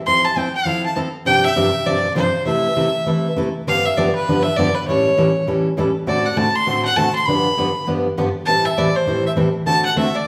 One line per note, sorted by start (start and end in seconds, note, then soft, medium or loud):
0.06 0.26 F3 medium
0.06 0.27 C4 medium
0.06 0.27 E4 medium
0.06 0.27 A4 medium
0.06 0.26 C6 loud
0.25 0.40 A5 medium
0.36 0.47 F3 medium
0.36 0.47 C4 medium
0.36 0.48 E4 medium
0.36 0.48 A4 medium
0.36 0.55 G5 medium
0.56 0.83 F5 medium
0.65 0.85 F3 soft
0.65 0.86 C4 medium
0.65 0.86 E4 medium
0.65 0.86 A4 medium
0.86 0.96 A5 medium
0.96 1.07 F3 medium
0.96 1.07 C4 medium
0.96 1.08 E4 medium
0.96 1.08 A4 medium
1.25 1.46 G2 medium
1.25 1.46 C3 medium
1.25 1.46 F3 medium
1.25 1.46 C4 medium
1.25 1.46 D4 medium
1.25 1.46 G4 medium
1.25 1.46 G5 loud
1.44 1.88 E5 loud
1.56 1.67 G2 medium
1.56 1.67 C3 medium
1.56 1.67 F3 medium
1.56 1.67 C4 medium
1.56 1.68 D4 medium
1.56 1.68 G4 medium
1.86 2.06 G2 medium
1.86 2.06 C3 medium
1.86 2.06 F3 medium
1.86 2.06 C4 medium
1.86 2.06 D4 medium
1.86 2.06 G4 medium
1.86 2.16 D5 loud
2.15 2.27 G2 medium
2.15 2.27 C3 medium
2.15 2.27 F3 medium
2.15 2.27 C4 medium
2.15 2.27 D4 medium
2.15 2.28 G4 medium
2.15 2.44 C5 medium
2.45 2.65 C3 medium
2.45 2.66 E3 medium
2.45 2.66 A3 medium
2.45 2.66 E4 medium
2.45 2.67 A4 medium
2.45 3.33 E5 medium
2.76 2.87 C3 medium
2.76 2.87 E3 medium
2.76 2.87 A3 medium
2.76 2.87 E4 medium
2.76 2.88 A4 medium
3.06 3.26 C3 medium
3.06 3.26 E3 medium
3.06 3.26 A3 medium
3.06 3.27 E4 medium
3.06 3.27 A4 medium
3.36 3.47 C3 medium
3.36 3.47 E3 medium
3.36 3.48 A3 medium
3.36 3.48 E4 medium
3.36 3.48 A4 medium
3.67 3.87 G2 medium
3.67 3.87 D3 medium
3.67 3.87 F3 medium
3.67 3.87 B3 medium
3.67 3.87 D4 medium
3.67 3.87 G4 medium
3.67 3.87 F5 loud
3.86 3.99 E5 loud
3.97 4.08 G2 medium
3.97 4.08 D3 medium
3.97 4.08 F3 medium
3.97 4.08 B3 medium
3.97 4.08 D4 medium
3.97 4.09 G4 medium
3.97 4.15 D5 medium
4.15 4.45 B4 medium
4.28 4.47 G2 medium
4.28 4.47 D3 medium
4.28 4.47 F3 medium
4.28 4.48 B3 medium
4.28 4.48 D4 medium
4.28 4.48 G4 medium
4.43 4.58 E5 loud
4.57 4.68 G2 medium
4.57 4.68 D3 medium
4.57 4.68 F3 medium
4.57 4.68 B3 medium
4.57 4.69 D4 medium
4.57 4.69 G4 medium
4.57 4.77 D5 loud
4.75 4.87 B4 medium
4.88 5.07 A2 medium
4.88 5.07 E3 medium
4.88 5.08 G3 medium
4.88 5.07 C#4 medium
4.88 5.08 E4 medium
4.88 5.08 A4 medium
4.88 5.43 C#5 medium
5.17 5.28 A2 medium
5.17 5.28 E3 medium
5.17 5.28 G3 medium
5.17 5.29 C#4 medium
5.17 5.28 E4 medium
5.17 5.28 A4 medium
5.47 5.67 A2 medium
5.47 5.67 E3 medium
5.47 5.67 G3 medium
5.47 5.67 C#4 medium
5.47 5.67 E4 medium
5.47 5.67 A4 medium
5.77 5.88 A2 medium
5.77 5.88 E3 medium
5.77 5.88 G3 medium
5.77 5.88 C#4 medium
5.77 5.89 E4 medium
5.77 5.89 A4 medium
6.06 6.26 A2 medium
6.06 6.27 D3 medium
6.06 6.27 A3 medium
6.06 6.26 C4 medium
6.06 6.27 F#4 medium
6.06 6.27 A4 medium
6.06 6.28 D5 loud
6.26 6.39 F#5 medium
6.36 6.47 A2 medium
6.36 6.47 D3 medium
6.36 6.48 A3 medium
6.36 6.48 C4 medium
6.36 6.48 F#4 medium
6.36 6.48 A4 medium
6.36 6.57 A5 loud
6.56 6.85 C6 loud
6.66 6.86 A2 medium
6.66 6.86 D3 medium
6.66 6.87 A3 medium
6.66 6.86 C4 medium
6.66 6.87 F#4 medium
6.66 6.87 A4 medium
6.85 6.98 F#5 medium
6.96 7.07 A2 medium
6.96 7.07 D3 medium
6.96 7.08 A3 medium
6.96 7.08 C4 medium
6.96 7.08 F#4 medium
6.96 7.08 A4 medium
6.96 7.15 A5 loud
7.15 7.27 C6 medium
7.26 7.47 G2 medium
7.26 7.47 D3 medium
7.26 7.47 F3 medium
7.26 7.47 B3 medium
7.26 7.47 D4 medium
7.26 7.47 G4 medium
7.26 7.86 B5 medium
7.57 7.68 G2 medium
7.57 7.68 D3 medium
7.57 7.68 F3 medium
7.57 7.68 B3 medium
7.57 7.69 D4 medium
7.57 7.68 G4 medium
7.87 8.06 G2 medium
7.87 8.06 D3 medium
7.87 8.07 F3 medium
7.87 8.07 B3 medium
7.87 8.07 D4 medium
7.87 8.07 G4 medium
8.17 8.28 G2 medium
8.17 8.28 D3 medium
8.17 8.28 F3 medium
8.17 8.28 B3 medium
8.17 8.28 D4 medium
8.17 8.28 G4 medium
8.46 8.67 A2 medium
8.46 8.67 E3 medium
8.46 8.67 G3 medium
8.46 8.67 C4 medium
8.46 8.67 E4 medium
8.46 8.67 A4 medium
8.46 8.67 A5 loud
8.65 8.80 E5 medium
8.77 8.88 A2 medium
8.77 8.88 E3 medium
8.77 8.88 G3 medium
8.77 8.88 C4 medium
8.77 8.89 E4 medium
8.77 8.88 A4 medium
8.77 8.98 D5 medium
8.97 9.25 C5 medium
9.06 9.26 A2 soft
9.06 9.26 E3 medium
9.06 9.27 G3 medium
9.06 9.27 C4 medium
9.06 9.27 E4 medium
9.06 9.27 A4 medium
9.27 9.32 E5 medium
9.36 9.47 A2 medium
9.36 9.47 E3 medium
9.36 9.48 G3 medium
9.36 9.47 C4 medium
9.36 9.48 E4 medium
9.36 9.48 A4 medium
9.66 9.86 D3 medium
9.66 9.86 A3 medium
9.66 9.86 C4 medium
9.66 9.86 F#4 medium
9.66 9.87 A4 medium
9.66 9.83 A5 loud
9.85 9.96 F#5 medium
9.96 10.07 D3 medium
9.96 10.07 A3 medium
9.96 10.08 C4 medium
9.96 10.07 F#4 medium
9.96 10.08 A4 medium
9.96 10.17 E5 medium
10.15 10.27 D5 medium